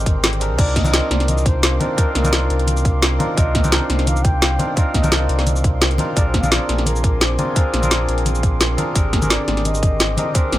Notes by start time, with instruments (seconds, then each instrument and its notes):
Already playing: sub bass G#1, tine electric piano D3 C4 D4 G4 G#4 A#4, ambient pad A#4 G5 C6 D6, flugelhorn D#5
0.06 kick, closed hi-hat, cabasa
0.24 snare, closed hi-hat, cabasa
0.33 closed hi-hat
0.40 tine electric piano C4 D4 G4 G#4 A#4, closed hi-hat, cabasa
0.50 sub bass C2
0.58 sub bass C2, tine electric piano C4 D4 D#4 F4 A#4, flugelhorn D5, ambient pad F5 C6, kick, closed hi-hat, crash, cabasa
0.76 flugelhorn D#5, kick, snare, closed hi-hat
0.84 tine electric piano C4 D4 D#4 F4 A#4, closed hi-hat, high conga, cabasa
0.94 snare, closed hi-hat, cabasa
1.11 sub bass C2, flugelhorn D5, snare, closed hi-hat
1.20 snare, closed hi-hat
1.28 flugelhorn D#5, closed hi-hat, high conga, cabasa
1.38 cabasa
1.46 flugelhorn C5, kick, closed hi-hat, cabasa
1.63 snare, closed hi-hat, cabasa
1.79 tine electric piano C4 D4 D#4 F4 A#4, flugelhorn C5, closed hi-hat, high conga, cabasa
1.97 tine electric piano C4 D4 D#4 F4 A#4, flugelhorn A#4, kick, closed hi-hat, cabasa
2.15 sub bass C2, flugelhorn A#4, snare, closed hi-hat
2.22 tine electric piano C4 D4 D#4 F4, closed hi-hat, high conga, cabasa
2.26 tine electric piano A#4
2.33 snare, closed hi-hat, cabasa
2.50 sub bass C2, closed hi-hat
2.59 closed hi-hat
2.67 closed hi-hat, high conga, cabasa
2.77 cabasa
2.85 kick, closed hi-hat, cabasa
3.02 snare, closed hi-hat, cabasa
3.19 tine electric piano C4 D4 D#4 F4 A#4, closed hi-hat, high conga, cabasa
3.36 sub bass C2, tine electric piano C4 D4 D#4 F4 A#4, flugelhorn D#5, kick, closed hi-hat, cabasa
3.55 kick, snare, closed hi-hat
3.62 tine electric piano C4 D4 D#4 F4 A#4, closed hi-hat, high conga, cabasa
3.72 flugelhorn C5, snare, closed hi-hat, cabasa
3.90 sub bass C2, snare, closed hi-hat
3.99 snare, closed hi-hat
4.07 flugelhorn F5, closed hi-hat, high conga, cabasa
4.16 cabasa
4.25 flugelhorn G5, kick, closed hi-hat, cabasa
4.42 snare, closed hi-hat, cabasa
4.58 tine electric piano C4 D4 D#4 F4 A#4, closed hi-hat, high conga, cabasa
4.76 tine electric piano C4 D4 D#4 F4 A#4, flugelhorn F5, kick, closed hi-hat, cabasa
4.94 sub bass C2, flugelhorn D#5, kick, snare, closed hi-hat, cabasa
5.02 tine electric piano C4 D4 D#4 F4 A#4, closed hi-hat, high conga, cabasa
5.12 snare, closed hi-hat, cabasa
5.29 sub bass C2, flugelhorn D5, closed hi-hat
5.39 snare, closed hi-hat
5.47 closed hi-hat, high conga, cabasa
5.56 cabasa
5.64 kick, closed hi-hat, cabasa
5.82 snare, closed hi-hat, cabasa
5.91 closed hi-hat
5.98 tine electric piano C4 D4 D#4 F4 A#4, closed hi-hat, high conga, cabasa
6.16 sub bass A#1, tine electric piano C4 D4 F4 G#4 A#4, ambient pad A#4 G#5 C6 D6, flugelhorn D5, kick, closed hi-hat, cabasa
6.28 flugelhorn C5
6.34 kick, snare, closed hi-hat
6.40 tine electric piano C4 D4 F4, flugelhorn F5, closed hi-hat, high conga, cabasa
6.44 tine electric piano G#4 A#4
6.51 flugelhorn D5, snare, closed hi-hat, cabasa
6.69 sub bass A#1, snare, closed hi-hat
6.78 snare, closed hi-hat
6.86 flugelhorn A#4, closed hi-hat, high conga, cabasa
6.96 cabasa
7.04 kick, closed hi-hat, cabasa
7.21 flugelhorn C5, snare, closed hi-hat, cabasa
7.38 tine electric piano C4 D4 F4 G#4 A#4, closed hi-hat, high conga, cabasa
7.55 tine electric piano C4 D4 F4 G#4 A#4, flugelhorn C5, kick, closed hi-hat, cabasa
7.73 sub bass A#1, snare, closed hi-hat
7.81 tine electric piano C4 D4 F4 G#4 A#4, closed hi-hat, high conga, cabasa
7.91 snare, closed hi-hat, cabasa
8.08 sub bass A#1, closed hi-hat
8.18 closed hi-hat
8.26 closed hi-hat, high conga, cabasa
8.35 cabasa
8.43 kick, closed hi-hat, cabasa
8.61 snare, closed hi-hat, cabasa
8.77 tine electric piano C4 D4 F4 G#4 A#4, closed hi-hat, high conga, cabasa
8.94 sub bass G#1, tine electric piano C4 D4 G4 G#4 A#4, ambient pad G5 D6, kick, closed hi-hat, cabasa
9.13 kick, snare, closed hi-hat
9.20 tine electric piano D3 C4 G4 G#4 A#4, closed hi-hat, high conga, cabasa
9.30 flugelhorn D5, snare, closed hi-hat, cabasa
9.48 sub bass G#1, snare, closed hi-hat
9.57 snare, closed hi-hat
9.65 flugelhorn D#5, closed hi-hat, high conga, cabasa
9.75 cabasa
9.83 kick, closed hi-hat, cabasa
10.00 snare, closed hi-hat, cabasa
10.17 tine electric piano C4 D4 G4 G#4 A#4, flugelhorn D#5, closed hi-hat, high conga, cabasa
10.34 tine electric piano C4 D4 G4 G#4 A#4, flugelhorn C5, kick, closed hi-hat, cabasa
10.52 sub bass G#1, snare, closed hi-hat, cabasa